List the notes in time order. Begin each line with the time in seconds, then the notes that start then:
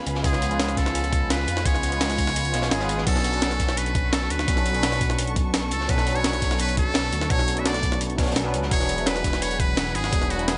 Already playing: G#3 B3 C#4 F4 G#4 B4 F5 G#5 B5
0.06 C#2, closed hi-hat
0.15 snare
0.23 C#2 G#3 B3 C#4 F4 G#4, kick, closed hi-hat
0.33 snare
0.42 closed hi-hat
0.47 F3 B3 C#4, closed hi-hat
0.53 F4 B4
0.60 snare, closed hi-hat
0.69 snare, closed hi-hat
0.77 A4, kick, snare, closed hi-hat
0.86 snare
0.95 closed hi-hat
1.04 closed hi-hat
1.12 kick, closed hi-hat
1.30 B4, snare, closed hi-hat
1.40 snare
1.47 F2, closed hi-hat
1.56 snare
1.64 C#2 G#3 B3 C#4 F4 G#4 C#5, kick, closed hi-hat
1.75 snare
1.83 closed hi-hat
1.89 G#3 B3 C#4, closed hi-hat
1.94 F4 B4
2.01 snare, closed hi-hat
2.10 snare, closed hi-hat
2.18 kick, closed hi-hat
2.27 snare
2.36 C#2, closed hi-hat
2.45 closed hi-hat
2.52 B1 G#3 B3 C#4 F4 C#5, snare, closed hi-hat
2.62 snare, closed hi-hat
2.71 G#1 G#4, snare, closed hi-hat
2.79 G#3 B3 C#4 F4 B4, snare, closed hi-hat
2.89 closed hi-hat
2.98 snare
3.05 B1 F#3 B3 C#4 D4 A4 A5 C#6, kick, closed hi-hat, crash
3.16 snare
3.24 closed hi-hat
3.30 F#3 B3 C#4, closed hi-hat
3.35 D4 B4
3.42 snare, closed hi-hat
3.51 snare, closed hi-hat
3.60 kick, snare, closed hi-hat
3.68 snare
3.77 B4, closed hi-hat
3.86 closed hi-hat
3.95 kick, closed hi-hat
4.13 A4, snare, closed hi-hat
4.22 snare
4.30 D2 B4, closed hi-hat
4.39 snare
4.46 B1 F#3 B3 C#4 D4 A4, kick, closed hi-hat
4.57 snare
4.66 closed hi-hat
4.71 F#3 B3 C#4, closed hi-hat
4.76 D4 B4
4.83 snare, closed hi-hat
4.92 snare, closed hi-hat
5.01 kick, closed hi-hat
5.10 snare
5.18 B1, closed hi-hat
5.27 closed hi-hat
5.36 kick, closed hi-hat
5.54 snare, closed hi-hat
5.71 C#2 A4, closed hi-hat
5.81 snare
5.88 B1 F#3 B3 C#4 D4 A4 B4, kick, closed hi-hat
5.98 snare
6.07 closed hi-hat
6.12 F#3 B3 C#4 C#5, closed hi-hat
6.18 D4 B4
6.24 snare, closed hi-hat
6.33 snare, closed hi-hat
6.42 kick, snare, closed hi-hat
6.51 snare
6.59 B4, closed hi-hat
6.68 closed hi-hat
6.77 A4, kick, closed hi-hat
6.94 snare, closed hi-hat
7.04 snare
7.12 D2, closed hi-hat
7.21 snare
7.29 B1 F#3 B3 C#4 D4 A4 C#5, kick, closed hi-hat
7.39 snare
7.48 closed hi-hat
7.53 F#3 A3 B3, closed hi-hat
7.59 D4 B4 E5
7.65 D5, snare, closed hi-hat
7.74 snare, closed hi-hat
7.83 kick, closed hi-hat
7.92 snare
8.01 B1, closed hi-hat
8.10 closed hi-hat
8.17 F#3 B3 C#4 D4 C#5, kick, snare, closed hi-hat
8.23 snare, closed hi-hat
8.26 snare, closed hi-hat
8.31 snare, closed hi-hat
8.36 snare, closed hi-hat
8.43 F#3 B3 C#4 D4 B4
8.54 C#2, closed hi-hat
8.63 snare
8.70 E1 F#3 B3 D4 E4 G#4 C#5 F#5 G#5 B5, kick, closed hi-hat
8.80 snare
8.89 closed hi-hat
8.95 F#3 B3 D4, closed hi-hat
9.00 E4 B4
9.06 B4, snare, closed hi-hat
9.16 snare, closed hi-hat
9.24 kick, snare, closed hi-hat
9.33 snare
9.42 C#5, closed hi-hat
9.51 closed hi-hat
9.60 B4, kick, closed hi-hat
9.77 snare, closed hi-hat
9.86 snare
9.95 G#1 G#4, closed hi-hat
10.04 snare
10.11 E1 F#3 B3 D4 E4 G#4, kick, closed hi-hat
10.22 snare
10.30 F#4, closed hi-hat
10.36 F#3 B3 D4, closed hi-hat
10.41 E4 B4
10.48 G#4, snare, closed hi-hat